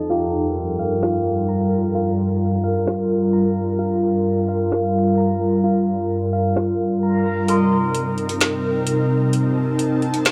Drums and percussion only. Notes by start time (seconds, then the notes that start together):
1.03 snare
2.87 snare
4.72 snare
6.33 open hi-hat
6.57 snare
7.48 closed hi-hat
7.95 closed hi-hat
8.18 closed hi-hat
8.29 closed hi-hat
8.41 snare, closed hi-hat
8.87 closed hi-hat
9.33 closed hi-hat
9.79 closed hi-hat
10.02 closed hi-hat
10.14 closed hi-hat
10.25 snare, closed hi-hat